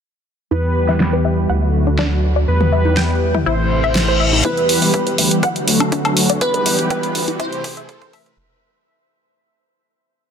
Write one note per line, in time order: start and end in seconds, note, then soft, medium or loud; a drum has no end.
0.51 1.47 E2 medium
0.51 1.49 E3 medium
0.51 1.49 G3 medium
0.51 1.49 B3 medium
0.51 0.59 E4 loud
0.51 1.49 G4 medium
0.51 1.40 B4 loud
0.88 0.92 E5 medium
0.88 snare soft
1.00 snare loud
1.13 1.18 B4 medium
1.25 1.33 E5 medium
1.49 2.45 D2 medium
1.49 2.47 D3 medium
1.49 2.47 F#3 medium
1.49 2.47 A3 medium
1.49 2.47 F#4 medium
1.49 1.55 F#5 loud
1.87 1.90 D4 medium
1.98 2.07 D4 loud
1.98 snare loud
2.36 2.39 D5 medium
2.48 3.44 E2 medium
2.48 4.43 E3 medium
2.48 3.45 G3 medium
2.48 3.45 B3 medium
2.48 3.45 G4 medium
2.48 3.37 B4 loud
2.61 2.66 B4 medium
2.61 mid tom medium
2.72 2.81 E5 medium
2.85 high conga medium
2.97 3.02 G5 loud
2.97 snare loud
3.34 3.37 E4 medium
3.34 mid tom medium
3.46 4.42 A1 medium
3.46 4.44 C3 medium
3.46 4.44 A3 medium
3.46 4.44 E4 medium
3.46 3.54 E4 medium
3.46 4.35 C5 medium
3.46 reverse cymbal medium
3.84 3.87 E5 medium
3.95 snare loud
4.08 4.13 C5 medium
4.20 4.28 E5 medium
4.33 high conga medium
4.44 4.78 E2 loud
4.44 5.42 E3 medium
4.44 5.42 G3 medium
4.44 5.42 B3 medium
4.44 4.53 E4 loud
4.44 5.42 G4 medium
4.44 5.34 B4 loud
4.44 5.34 B4 medium
4.44 kick loud
4.44 closed hi-hat medium
4.44 riser medium
4.57 closed hi-hat soft
4.69 open hi-hat loud
4.82 5.15 E1 medium
4.82 4.85 E5 medium
4.82 open hi-hat medium
4.94 kick medium
4.94 closed hi-hat medium
5.07 5.12 B4 medium
5.07 closed hi-hat soft
5.18 5.29 D2 medium
5.18 5.26 E5 medium
5.18 open hi-hat loud
5.31 closed hi-hat medium
5.43 6.40 D3 medium
5.43 6.40 F#3 medium
5.43 6.40 A3 medium
5.43 6.40 F#4 medium
5.43 5.48 F#5 loud
5.43 kick loud
5.43 closed hi-hat medium
5.56 closed hi-hat soft
5.67 5.78 D2 loud
5.67 open hi-hat medium
5.80 5.83 D4 medium
5.80 closed hi-hat soft
5.80 high woodblock medium
5.92 6.00 D4 loud
5.92 kick loud
5.92 closed hi-hat medium
6.05 6.38 D2 medium
6.05 closed hi-hat soft
6.05 high woodblock medium
6.17 open hi-hat loud
6.30 6.33 D5 medium
6.30 closed hi-hat medium
6.41 6.75 E2 medium
6.41 8.36 E3 medium
6.41 7.39 G3 medium
6.41 7.39 B3 medium
6.41 7.39 G4 medium
6.41 7.30 B4 loud
6.41 kick loud
6.41 closed hi-hat medium
6.54 6.59 B4 medium
6.54 closed hi-hat soft
6.66 6.74 E5 medium
6.66 open hi-hat loud
6.79 7.12 E1 medium
6.79 closed hi-hat medium
6.90 6.96 G5 loud
6.90 kick loud
6.90 closed hi-hat medium
7.03 closed hi-hat soft
7.15 7.26 D2 medium
7.15 open hi-hat loud
7.28 7.31 E4 medium
7.28 closed hi-hat medium
7.40 8.37 C3 medium
7.40 8.37 A3 medium
7.40 7.48 E4 loud
7.40 8.37 E4 medium
7.40 8.29 C5 loud
7.40 kick loud
7.40 closed hi-hat medium
7.52 closed hi-hat soft
7.64 7.75 A1 loud
7.64 kick loud
7.64 open hi-hat loud
7.77 7.80 E5 medium
7.77 closed hi-hat medium
7.89 kick loud
7.89 closed hi-hat medium
8.02 8.35 A1 medium
8.02 8.07 C5 medium
8.02 kick medium
8.02 closed hi-hat soft
8.13 8.21 E5 medium
8.13 kick loud
8.13 open hi-hat loud
8.13 high woodblock medium
8.26 kick loud
8.26 closed hi-hat medium